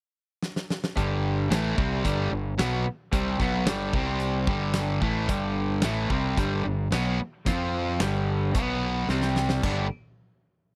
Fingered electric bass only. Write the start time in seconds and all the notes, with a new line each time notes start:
0.97 G1
1.51 A1
1.78 C2
2.05 G1
2.32 G1
2.60 B1
2.87 muted fingered electric bass stroke
3.13 C2
3.40 B1
3.66 G1
3.94 C2
4.48 G1
5.02 A1
5.29 G1
5.84 A1
6.11 C2
6.37 G1
6.66 G1
6.93 B1
7.47 F2
8.01 G1
8.55 B1
9.09 C2
9.64 G1